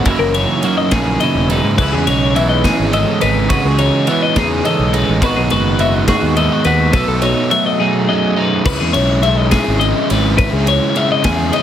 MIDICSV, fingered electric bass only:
0, 0, Header, 1, 2, 480
1, 0, Start_track
1, 0, Tempo, 574163
1, 47, Time_signature, 6, 3, 24, 8
1, 9718, End_track
2, 0, Start_track
2, 0, Title_t, "Fingered electric bass"
2, 0, Program_c, 0, 33
2, 43, Note_on_c, 0, 30, 101
2, 148, Note_off_c, 0, 30, 0
2, 159, Note_on_c, 0, 30, 100
2, 368, Note_off_c, 0, 30, 0
2, 767, Note_on_c, 0, 34, 89
2, 973, Note_off_c, 0, 34, 0
2, 1125, Note_on_c, 0, 28, 76
2, 1331, Note_off_c, 0, 28, 0
2, 1368, Note_on_c, 0, 44, 77
2, 1470, Note_off_c, 0, 44, 0
2, 1495, Note_on_c, 0, 37, 89
2, 1594, Note_off_c, 0, 37, 0
2, 1617, Note_on_c, 0, 40, 90
2, 1715, Note_off_c, 0, 40, 0
2, 1731, Note_on_c, 0, 35, 78
2, 2244, Note_off_c, 0, 35, 0
2, 2334, Note_on_c, 0, 32, 77
2, 2536, Note_off_c, 0, 32, 0
2, 2696, Note_on_c, 0, 32, 91
2, 3000, Note_off_c, 0, 32, 0
2, 3051, Note_on_c, 0, 37, 90
2, 3254, Note_off_c, 0, 37, 0
2, 3647, Note_on_c, 0, 40, 89
2, 3852, Note_off_c, 0, 40, 0
2, 4004, Note_on_c, 0, 35, 88
2, 4210, Note_off_c, 0, 35, 0
2, 4253, Note_on_c, 0, 33, 93
2, 4353, Note_off_c, 0, 33, 0
2, 4364, Note_on_c, 0, 32, 98
2, 4467, Note_off_c, 0, 32, 0
2, 4490, Note_on_c, 0, 35, 90
2, 4591, Note_off_c, 0, 35, 0
2, 4605, Note_on_c, 0, 30, 81
2, 5121, Note_off_c, 0, 30, 0
2, 5200, Note_on_c, 0, 39, 81
2, 5409, Note_off_c, 0, 39, 0
2, 5560, Note_on_c, 0, 39, 87
2, 5768, Note_off_c, 0, 39, 0
2, 5794, Note_on_c, 0, 35, 106
2, 5902, Note_off_c, 0, 35, 0
2, 5915, Note_on_c, 0, 35, 94
2, 6126, Note_off_c, 0, 35, 0
2, 7234, Note_on_c, 0, 37, 98
2, 7343, Note_off_c, 0, 37, 0
2, 7363, Note_on_c, 0, 40, 92
2, 7468, Note_off_c, 0, 40, 0
2, 7486, Note_on_c, 0, 35, 86
2, 8002, Note_off_c, 0, 35, 0
2, 8090, Note_on_c, 0, 32, 87
2, 8295, Note_off_c, 0, 32, 0
2, 8448, Note_on_c, 0, 32, 93
2, 8757, Note_off_c, 0, 32, 0
2, 8801, Note_on_c, 0, 37, 101
2, 9010, Note_off_c, 0, 37, 0
2, 9403, Note_on_c, 0, 40, 95
2, 9611, Note_off_c, 0, 40, 0
2, 9718, End_track
0, 0, End_of_file